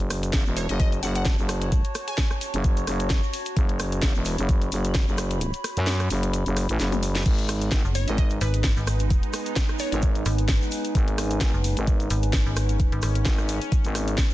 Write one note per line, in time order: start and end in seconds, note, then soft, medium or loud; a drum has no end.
0.00 0.32 F#1 loud
0.00 9.02 F#4 medium
0.00 8.38 C#5 medium
0.00 closed hi-hat soft
0.10 cross-stick medium
0.10 open hi-hat loud
0.10 shaker loud
0.16 4.00 A5 medium
0.23 closed hi-hat medium
0.23 shaker soft
0.33 0.44 F#1 loud
0.33 kick loud
0.33 snare loud
0.33 closed hi-hat medium
0.33 shaker medium
0.46 0.67 E1 loud
0.46 shaker soft
0.57 0.67 C#5 loud
0.57 open hi-hat loud
0.57 shaker loud
0.69 1.01 F#1 loud
0.69 0.76 D#5 medium
0.69 closed hi-hat medium
0.69 shaker soft
0.80 0.88 D#5 medium
0.80 kick loud
0.80 closed hi-hat medium
0.80 shaker medium
0.92 closed hi-hat soft
0.92 shaker soft
1.03 1.36 F#1 medium
1.03 1.11 F#5 medium
1.03 open hi-hat loud
1.03 shaker loud
1.15 1.22 F#5 medium
1.15 closed hi-hat soft
1.15 shaker soft
1.25 kick loud
1.25 snare loud
1.25 closed hi-hat medium
1.25 shaker medium
1.38 1.83 F#1 medium
1.38 shaker soft
1.49 cross-stick medium
1.49 open hi-hat loud
1.49 shaker medium
1.61 closed hi-hat medium
1.61 shaker soft
1.72 kick loud
1.72 closed hi-hat medium
1.72 shaker medium
1.85 closed hi-hat soft
1.95 cross-stick medium
1.95 open hi-hat loud
1.95 shaker medium
2.08 2.14 G#5 medium
2.08 closed hi-hat medium
2.08 shaker soft
2.18 2.26 G#5 medium
2.18 kick loud
2.18 snare loud
2.18 closed hi-hat medium
2.18 shaker medium
2.31 cross-stick medium
2.31 shaker soft
2.41 open hi-hat loud
2.41 shaker medium
2.54 2.86 F#1 loud
2.54 closed hi-hat medium
2.54 shaker soft
2.64 kick loud
2.64 closed hi-hat medium
2.64 shaker soft
2.77 closed hi-hat soft
2.77 shaker soft
2.87 3.21 F#1 loud
2.87 cross-stick medium
2.87 open hi-hat loud
2.87 shaker medium
3.00 closed hi-hat medium
3.00 shaker soft
3.10 kick loud
3.10 snare loud
3.10 closed hi-hat medium
3.10 shaker medium
3.23 shaker soft
3.33 open hi-hat loud
3.33 shaker loud
3.45 closed hi-hat medium
3.45 shaker soft
3.57 4.01 F#1 loud
3.57 kick loud
3.57 closed hi-hat medium
3.57 shaker soft
3.69 closed hi-hat soft
3.80 cross-stick medium
3.80 open hi-hat loud
3.80 shaker medium
3.86 8.94 B5 medium
3.92 closed hi-hat medium
3.92 shaker soft
4.02 4.13 F#1 loud
4.02 kick loud
4.02 snare loud
4.02 closed hi-hat medium
4.02 shaker soft
4.15 4.36 E1 loud
4.15 shaker soft
4.25 open hi-hat loud
4.25 shaker medium
4.38 4.70 F#1 loud
4.38 closed hi-hat medium
4.38 shaker soft
4.49 kick loud
4.49 closed hi-hat medium
4.49 shaker soft
4.62 closed hi-hat soft
4.62 shaker soft
4.72 5.06 F#1 medium
4.72 open hi-hat loud
4.72 shaker medium
4.85 closed hi-hat medium
4.85 shaker soft
4.95 kick loud
4.95 snare loud
4.95 closed hi-hat medium
4.95 shaker medium
5.08 5.52 F#1 medium
5.08 shaker soft
5.18 cross-stick medium
5.18 open hi-hat loud
5.18 shaker medium
5.31 closed hi-hat medium
5.31 shaker soft
5.41 closed hi-hat medium
5.41 shaker medium
5.53 closed hi-hat soft
5.53 shaker soft
5.64 cross-stick medium
5.64 open hi-hat loud
5.64 shaker medium
5.77 6.09 F#2 loud
5.77 closed hi-hat medium
5.77 shaker soft
5.86 snare loud
5.86 closed hi-hat medium
5.86 shaker soft
6.00 cross-stick medium
6.00 closed hi-hat soft
6.00 shaker soft
6.10 6.44 F#1 loud
6.10 open hi-hat loud
6.10 shaker loud
6.23 closed hi-hat medium
6.23 shaker soft
6.33 closed hi-hat medium
6.33 shaker medium
6.46 6.67 F#1 loud
6.46 closed hi-hat soft
6.46 shaker soft
6.57 cross-stick medium
6.57 open hi-hat loud
6.57 shaker medium
6.69 6.78 A1 loud
6.69 closed hi-hat medium
6.69 shaker soft
6.79 7.24 F#1 loud
6.79 snare medium
6.79 open hi-hat medium
6.79 shaker soft
6.92 closed hi-hat soft
6.92 high tom medium
6.92 shaker soft
7.03 open hi-hat loud
7.03 shaker medium
7.15 snare medium
7.15 closed hi-hat medium
7.15 shaker soft
7.26 7.70 G#1 loud
7.26 14.34 G#3 medium
7.26 14.34 B3 medium
7.26 14.34 D#4 medium
7.26 10.91 D#4 medium
7.26 kick loud
7.26 closed hi-hat medium
7.26 crash medium
7.26 shaker medium
7.38 closed hi-hat soft
7.49 cross-stick medium
7.49 open hi-hat loud
7.49 shaker medium
7.55 14.34 B4 medium
7.62 closed hi-hat medium
7.62 shaker soft
7.72 7.83 G#1 loud
7.72 kick loud
7.72 snare loud
7.72 closed hi-hat medium
7.72 shaker medium
7.85 8.06 F#1 medium
7.85 shaker soft
7.95 8.05 C#5 medium
7.95 open hi-hat loud
7.95 shaker loud
8.08 8.40 G#1 loud
8.08 8.14 D#5 medium
8.08 14.34 G#5 medium
8.08 closed hi-hat medium
8.08 shaker soft
8.18 8.26 D#5 medium
8.18 kick loud
8.18 closed hi-hat medium
8.18 shaker medium
8.30 closed hi-hat soft
8.30 shaker soft
8.41 8.75 G#1 loud
8.41 8.55 B4 medium
8.41 open hi-hat loud
8.41 shaker loud
8.54 closed hi-hat medium
8.54 shaker soft
8.64 kick loud
8.64 snare loud
8.64 closed hi-hat medium
8.64 shaker medium
8.77 9.21 G#1 loud
8.77 shaker soft
8.87 cross-stick medium
8.87 open hi-hat loud
8.87 shaker medium
8.99 closed hi-hat medium
8.99 shaker soft
9.10 kick loud
9.10 closed hi-hat medium
9.10 shaker medium
9.23 closed hi-hat soft
9.33 cross-stick medium
9.33 open hi-hat loud
9.33 shaker loud
9.46 closed hi-hat medium
9.46 shaker soft
9.56 kick loud
9.56 snare loud
9.56 closed hi-hat medium
9.56 shaker medium
9.68 cross-stick medium
9.68 shaker soft
9.79 9.88 C#5 medium
9.79 open hi-hat loud
9.79 shaker medium
9.92 10.24 G#1 loud
9.92 9.99 C#5 medium
9.92 closed hi-hat medium
9.92 shaker soft
10.02 kick loud
10.02 closed hi-hat medium
10.02 shaker medium
10.15 closed hi-hat soft
10.15 shaker soft
10.26 10.60 G#1 loud
10.26 cross-stick medium
10.26 open hi-hat loud
10.26 shaker medium
10.38 closed hi-hat medium
10.38 shaker soft
10.48 kick loud
10.48 snare loud
10.48 closed hi-hat medium
10.48 shaker medium
10.62 shaker soft
10.71 open hi-hat loud
10.71 shaker loud
10.85 closed hi-hat medium
10.85 shaker soft
10.95 11.40 G#1 loud
10.95 14.34 C#4 medium
10.95 kick loud
10.95 closed hi-hat medium
10.95 shaker medium
11.08 closed hi-hat soft
11.18 cross-stick medium
11.18 open hi-hat loud
11.18 shaker medium
11.30 closed hi-hat soft
11.30 shaker soft
11.41 11.52 G#1 loud
11.41 kick loud
11.41 snare loud
11.41 closed hi-hat medium
11.41 shaker medium
11.54 11.75 F#1 loud
11.54 shaker soft
11.64 open hi-hat loud
11.64 shaker loud
11.77 12.09 G#1 loud
11.77 closed hi-hat medium
11.77 shaker soft
11.87 kick loud
11.87 closed hi-hat medium
11.87 shaker medium
12.00 closed hi-hat soft
12.00 shaker soft
12.10 12.44 G#1 loud
12.10 open hi-hat loud
12.10 shaker medium
12.22 closed hi-hat soft
12.22 shaker soft
12.33 kick loud
12.33 snare loud
12.33 closed hi-hat medium
12.33 shaker medium
12.46 12.90 G#1 loud
12.46 shaker soft
12.56 cross-stick medium
12.56 open hi-hat loud
12.56 shaker loud
12.69 closed hi-hat medium
12.69 shaker soft
12.80 kick loud
12.80 closed hi-hat medium
12.80 shaker medium
12.92 13.01 G#1 loud
12.92 closed hi-hat soft
13.02 13.24 G#1 loud
13.02 cross-stick medium
13.02 open hi-hat loud
13.02 shaker loud
13.15 closed hi-hat medium
13.15 shaker soft
13.25 13.60 G#1 loud
13.25 kick loud
13.25 snare loud
13.25 closed hi-hat medium
13.25 shaker medium
13.38 cross-stick medium
13.38 shaker soft
13.49 open hi-hat loud
13.49 shaker loud
13.62 closed hi-hat medium
13.62 shaker soft
13.72 kick loud
13.72 closed hi-hat medium
13.72 shaker medium
13.84 14.16 G#1 loud
13.84 closed hi-hat soft
13.84 shaker soft
13.95 cross-stick medium
13.95 open hi-hat loud
13.95 shaker medium
14.08 closed hi-hat medium
14.08 shaker soft
14.18 kick loud
14.18 snare loud
14.18 open hi-hat medium
14.18 shaker soft
14.30 shaker soft